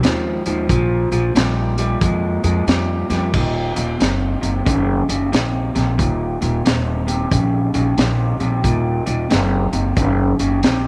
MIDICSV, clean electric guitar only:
0, 0, Header, 1, 2, 480
1, 0, Start_track
1, 0, Key_signature, -6, "minor"
1, 0, Tempo, 662252
1, 507, Time_signature, 4, 2, 24, 8
1, 7882, End_track
2, 0, Start_track
2, 0, Title_t, "Clean electric guitar"
2, 0, Program_c, 0, 27
2, 22, Note_on_c, 0, 44, 77
2, 28, Note_on_c, 0, 53, 84
2, 301, Note_off_c, 0, 44, 0
2, 304, Note_off_c, 0, 53, 0
2, 334, Note_on_c, 0, 44, 78
2, 338, Note_on_c, 0, 53, 76
2, 489, Note_off_c, 0, 44, 0
2, 491, Note_off_c, 0, 53, 0
2, 507, Note_on_c, 0, 46, 82
2, 509, Note_on_c, 0, 53, 97
2, 783, Note_off_c, 0, 46, 0
2, 784, Note_off_c, 0, 53, 0
2, 813, Note_on_c, 0, 46, 75
2, 815, Note_on_c, 0, 53, 81
2, 968, Note_off_c, 0, 46, 0
2, 969, Note_off_c, 0, 53, 0
2, 982, Note_on_c, 0, 46, 78
2, 985, Note_on_c, 0, 55, 81
2, 1260, Note_off_c, 0, 46, 0
2, 1262, Note_off_c, 0, 55, 0
2, 1292, Note_on_c, 0, 46, 78
2, 1296, Note_on_c, 0, 55, 86
2, 1447, Note_off_c, 0, 46, 0
2, 1449, Note_off_c, 0, 55, 0
2, 1465, Note_on_c, 0, 46, 82
2, 1470, Note_on_c, 0, 56, 80
2, 1742, Note_off_c, 0, 46, 0
2, 1744, Note_off_c, 0, 56, 0
2, 1768, Note_on_c, 0, 46, 72
2, 1769, Note_on_c, 0, 56, 84
2, 1925, Note_off_c, 0, 46, 0
2, 1926, Note_off_c, 0, 56, 0
2, 1941, Note_on_c, 0, 46, 82
2, 1944, Note_on_c, 0, 55, 82
2, 2219, Note_off_c, 0, 46, 0
2, 2221, Note_off_c, 0, 55, 0
2, 2245, Note_on_c, 0, 46, 69
2, 2251, Note_on_c, 0, 55, 84
2, 2404, Note_off_c, 0, 46, 0
2, 2406, Note_off_c, 0, 55, 0
2, 2417, Note_on_c, 0, 39, 77
2, 2421, Note_on_c, 0, 46, 86
2, 2697, Note_off_c, 0, 39, 0
2, 2700, Note_off_c, 0, 46, 0
2, 2725, Note_on_c, 0, 39, 71
2, 2727, Note_on_c, 0, 46, 78
2, 2883, Note_off_c, 0, 39, 0
2, 2885, Note_off_c, 0, 46, 0
2, 2896, Note_on_c, 0, 39, 66
2, 2900, Note_on_c, 0, 48, 85
2, 3177, Note_off_c, 0, 39, 0
2, 3179, Note_off_c, 0, 48, 0
2, 3200, Note_on_c, 0, 39, 65
2, 3205, Note_on_c, 0, 48, 63
2, 3361, Note_off_c, 0, 39, 0
2, 3363, Note_off_c, 0, 48, 0
2, 3374, Note_on_c, 0, 39, 77
2, 3377, Note_on_c, 0, 49, 86
2, 3656, Note_off_c, 0, 39, 0
2, 3658, Note_off_c, 0, 49, 0
2, 3689, Note_on_c, 0, 39, 67
2, 3692, Note_on_c, 0, 49, 74
2, 3846, Note_off_c, 0, 39, 0
2, 3847, Note_off_c, 0, 49, 0
2, 3857, Note_on_c, 0, 39, 69
2, 3859, Note_on_c, 0, 48, 89
2, 4138, Note_off_c, 0, 39, 0
2, 4139, Note_off_c, 0, 48, 0
2, 4167, Note_on_c, 0, 39, 67
2, 4169, Note_on_c, 0, 48, 69
2, 4325, Note_off_c, 0, 39, 0
2, 4326, Note_off_c, 0, 48, 0
2, 4335, Note_on_c, 0, 39, 80
2, 4339, Note_on_c, 0, 46, 88
2, 4617, Note_off_c, 0, 39, 0
2, 4619, Note_off_c, 0, 46, 0
2, 4646, Note_on_c, 0, 39, 67
2, 4653, Note_on_c, 0, 46, 78
2, 4804, Note_off_c, 0, 39, 0
2, 4808, Note_off_c, 0, 46, 0
2, 4821, Note_on_c, 0, 39, 65
2, 4823, Note_on_c, 0, 48, 78
2, 5100, Note_off_c, 0, 39, 0
2, 5101, Note_off_c, 0, 48, 0
2, 5124, Note_on_c, 0, 39, 60
2, 5128, Note_on_c, 0, 48, 77
2, 5284, Note_off_c, 0, 39, 0
2, 5286, Note_off_c, 0, 48, 0
2, 5300, Note_on_c, 0, 39, 70
2, 5304, Note_on_c, 0, 49, 82
2, 5580, Note_off_c, 0, 39, 0
2, 5582, Note_off_c, 0, 49, 0
2, 5611, Note_on_c, 0, 39, 74
2, 5613, Note_on_c, 0, 49, 73
2, 5767, Note_off_c, 0, 39, 0
2, 5768, Note_off_c, 0, 49, 0
2, 5779, Note_on_c, 0, 39, 74
2, 5783, Note_on_c, 0, 48, 74
2, 6060, Note_off_c, 0, 39, 0
2, 6062, Note_off_c, 0, 48, 0
2, 6089, Note_on_c, 0, 39, 68
2, 6092, Note_on_c, 0, 48, 75
2, 6247, Note_off_c, 0, 39, 0
2, 6248, Note_off_c, 0, 48, 0
2, 6262, Note_on_c, 0, 39, 86
2, 6263, Note_on_c, 0, 46, 89
2, 6542, Note_off_c, 0, 39, 0
2, 6542, Note_off_c, 0, 46, 0
2, 6567, Note_on_c, 0, 39, 70
2, 6569, Note_on_c, 0, 46, 77
2, 6726, Note_off_c, 0, 39, 0
2, 6727, Note_off_c, 0, 46, 0
2, 6741, Note_on_c, 0, 39, 76
2, 6745, Note_on_c, 0, 48, 80
2, 7022, Note_off_c, 0, 39, 0
2, 7024, Note_off_c, 0, 48, 0
2, 7050, Note_on_c, 0, 39, 69
2, 7051, Note_on_c, 0, 48, 73
2, 7208, Note_off_c, 0, 39, 0
2, 7209, Note_off_c, 0, 48, 0
2, 7227, Note_on_c, 0, 39, 69
2, 7231, Note_on_c, 0, 49, 85
2, 7505, Note_off_c, 0, 39, 0
2, 7507, Note_off_c, 0, 49, 0
2, 7535, Note_on_c, 0, 39, 75
2, 7537, Note_on_c, 0, 49, 76
2, 7691, Note_off_c, 0, 39, 0
2, 7692, Note_off_c, 0, 49, 0
2, 7708, Note_on_c, 0, 39, 71
2, 7712, Note_on_c, 0, 48, 80
2, 7882, Note_off_c, 0, 39, 0
2, 7882, Note_off_c, 0, 48, 0
2, 7882, End_track
0, 0, End_of_file